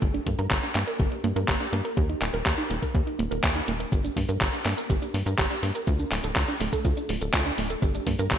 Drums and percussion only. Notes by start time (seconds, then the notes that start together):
0.02 kick, closed hi-hat
0.14 closed hi-hat
0.26 kick, closed hi-hat
0.39 closed hi-hat
0.51 kick, clap, closed hi-hat
0.63 closed hi-hat
0.75 clap, closed hi-hat
0.87 closed hi-hat
1.00 kick, closed hi-hat
1.12 closed hi-hat
1.24 closed hi-hat
1.36 closed hi-hat
1.48 kick, clap, closed hi-hat
1.61 closed hi-hat
1.73 closed hi-hat
1.85 closed hi-hat
1.97 kick, closed hi-hat
2.09 closed hi-hat
2.22 clap, closed hi-hat
2.34 closed hi-hat
2.46 kick, clap, closed hi-hat
2.58 closed hi-hat
2.71 closed hi-hat
2.82 kick, closed hi-hat
2.95 kick, closed hi-hat
3.07 closed hi-hat
3.19 closed hi-hat
3.32 closed hi-hat
3.43 kick, clap, closed hi-hat
3.56 closed hi-hat
3.68 closed hi-hat
3.80 closed hi-hat
3.92 kick, closed hi-hat, cabasa
4.05 closed hi-hat, cabasa
4.17 kick, open hi-hat
4.29 closed hi-hat, cabasa
4.41 kick, clap, closed hi-hat, cabasa
4.53 closed hi-hat, cabasa
4.66 clap, open hi-hat
4.78 closed hi-hat, cabasa
4.90 kick, closed hi-hat, cabasa
5.02 closed hi-hat, cabasa
5.14 open hi-hat
5.27 closed hi-hat, cabasa
5.39 kick, clap, closed hi-hat, cabasa
5.51 closed hi-hat, cabasa
5.63 open hi-hat
5.75 closed hi-hat, cabasa
5.87 kick, closed hi-hat, cabasa
5.99 closed hi-hat, cabasa
6.12 clap, open hi-hat
6.24 closed hi-hat, cabasa
6.36 kick, clap, closed hi-hat, cabasa
6.48 closed hi-hat, cabasa
6.60 open hi-hat
6.73 kick, closed hi-hat, cabasa
6.85 kick, closed hi-hat, cabasa
6.97 closed hi-hat, cabasa
7.09 open hi-hat
7.21 closed hi-hat, cabasa
7.33 kick, clap, closed hi-hat, cabasa
7.46 closed hi-hat, cabasa
7.58 open hi-hat
7.70 closed hi-hat, cabasa
7.82 kick, closed hi-hat, cabasa
7.95 closed hi-hat, cabasa
8.07 kick, open hi-hat
8.19 closed hi-hat, cabasa
8.31 kick, clap, closed hi-hat, cabasa